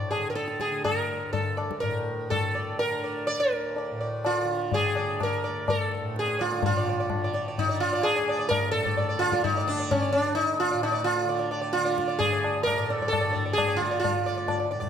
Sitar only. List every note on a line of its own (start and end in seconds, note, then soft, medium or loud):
0.00 0.10 D5 soft
0.11 0.29 G#4 medium
0.30 0.35 A#4 medium
0.35 0.60 A4 medium
0.61 0.84 G#4 medium
0.84 1.32 A#4 medium
1.33 1.80 A4 medium
1.57 1.80 D5 soft
1.80 2.30 A#4 medium
2.30 2.76 A4 medium
2.55 2.78 D5 soft
2.79 3.24 A#4 medium
3.04 3.26 D5 soft
3.27 3.40 D5 medium
3.40 4.08 A#4 medium
3.78 4.00 D5 soft
4.01 4.23 D5 soft
4.25 4.74 F4 medium
4.25 4.47 D5 soft
4.73 5.22 G#4 medium
4.73 4.95 D5 soft
4.97 5.19 D5 soft
5.21 5.69 A#4 medium
5.21 5.43 D5 soft
5.44 5.66 D5 soft
5.69 6.13 A4 medium
5.69 5.90 D5 soft
6.19 6.41 G#4 medium
6.39 6.64 F4 medium
6.39 6.61 D5 soft
6.66 7.31 F4 medium
6.77 6.88 D5 soft
6.89 6.99 D5 soft
7.00 7.21 D5 soft
7.24 7.33 D5 soft
7.34 7.47 D5 soft
7.48 7.68 D5 soft
7.59 7.80 D#4 medium
7.69 7.91 D5 soft
7.80 8.05 F4 medium
7.93 8.14 D5 soft
8.03 8.47 G#4 loud
8.16 8.28 D5 soft
8.29 8.38 D5 soft
8.39 8.61 D5 soft
8.49 8.71 A#4 loud
8.71 9.21 A4 loud
8.86 8.96 D5 soft
8.97 9.08 D5 soft
9.09 9.31 D5 soft
9.19 9.42 F4 loud
9.33 9.54 D5 soft
9.44 9.68 D#4 medium
9.57 9.78 D5 soft
9.68 9.89 D4 medium
9.80 10.01 D5 soft
9.91 10.12 C#4 medium
10.02 10.24 D5 soft
10.12 10.35 D4 medium
10.26 10.48 D5 soft
10.35 10.59 D#4 loud
10.60 10.83 F4 medium
10.71 10.91 D5 soft
10.83 11.04 D#4 medium
10.92 11.15 D5 soft
11.04 11.48 F4 medium
11.29 11.38 D5 soft
11.39 11.50 D5 soft
11.51 11.60 D5 soft
11.62 11.84 D5 soft
11.73 12.17 F4 loud
11.85 12.07 D5 soft
12.08 12.30 D5 soft
12.19 12.63 G#4 loud
12.33 12.54 D5 soft
12.63 12.91 A#4 loud
12.77 12.89 D5 soft
12.90 13.08 A4 loud
12.90 13.01 D5 soft
13.02 13.19 D5 soft
13.08 13.53 A4 loud
13.21 13.31 D5 soft
13.33 13.45 D5 soft
13.46 13.67 D5 soft
13.53 13.79 G#4 loud
13.68 13.90 D5 soft
13.76 13.98 F4 medium
13.91 14.13 D5 soft
14.00 14.66 F4 medium
14.26 14.36 D5 soft
14.37 14.47 D5 soft
14.48 14.58 D5 soft
14.60 14.70 D5 soft
14.71 14.79 D5 soft
14.80 14.89 D5 soft